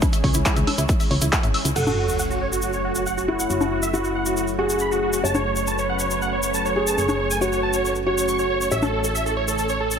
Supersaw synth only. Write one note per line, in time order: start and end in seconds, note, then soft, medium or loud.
1.76 1.84 F#5 medium
1.87 1.95 F#4 medium
1.97 2.06 F#4 medium
2.08 2.17 F#4 medium
2.19 2.28 F#5 medium
2.30 2.38 F#4 medium
2.41 2.49 C#5 medium
2.52 2.60 F#4 medium
2.63 2.71 F#4 medium
2.74 2.82 C#5 medium
2.85 2.93 F#4 medium
2.95 3.04 F#4 medium
3.06 3.15 F#5 medium
3.17 3.25 F#4 medium
3.28 3.36 F#4 medium
3.39 3.47 F#5 medium
3.50 3.58 F#4 medium
3.61 3.69 F#4 medium
3.72 3.80 F#4 medium
3.83 3.91 E5 medium
3.93 4.02 F#4 medium
4.04 4.12 F#4 medium
4.15 4.23 F#5 medium
4.26 4.34 F#4 medium
4.37 4.45 F#4 medium
4.59 4.67 F#4 medium
4.70 4.78 F#4 medium
4.80 4.89 B5 medium
4.91 5.00 F#4 medium
5.02 5.10 F#4 medium
5.13 5.21 F#4 medium
5.24 5.32 A5 loud
5.35 5.43 C#5 medium
5.46 5.54 C#5 medium
5.57 5.65 C#5 medium
5.67 5.76 A5 medium
5.78 5.86 C#5 medium
5.89 5.97 F#5 medium
6.00 6.08 C#5 medium
6.11 6.19 C#5 medium
6.22 6.30 F#5 medium
6.33 6.41 C#5 medium
6.44 6.52 C#5 medium
6.54 6.62 A5 loud
6.65 6.73 C#5 medium
6.76 6.84 C#5 medium
6.87 6.95 A5 medium
6.98 7.06 C#5 medium
7.09 7.17 C#5 medium
7.20 7.28 C#5 medium
7.30 7.39 G#5 medium
7.41 7.49 C#5 medium
7.52 7.60 C#5 medium
7.63 7.71 A5 medium
7.74 7.82 C#5 medium
7.85 7.93 C#5 medium
8.06 8.15 C#5 medium
8.17 8.25 C#5 medium
8.28 8.36 C#6 medium
8.39 8.47 C#5 medium
8.50 8.58 C#5 medium
8.61 8.69 C#5 medium
8.72 8.80 E5 loud
8.82 8.91 A4 medium
8.93 9.01 A4 medium
9.04 9.12 A4 medium
9.15 9.23 E5 medium
9.26 9.34 A4 medium
9.37 9.45 C#5 medium
9.48 9.56 A4 medium
9.58 9.67 A4 medium
9.69 9.78 C#5 medium
9.80 9.89 A4 medium
9.91 9.99 A4 medium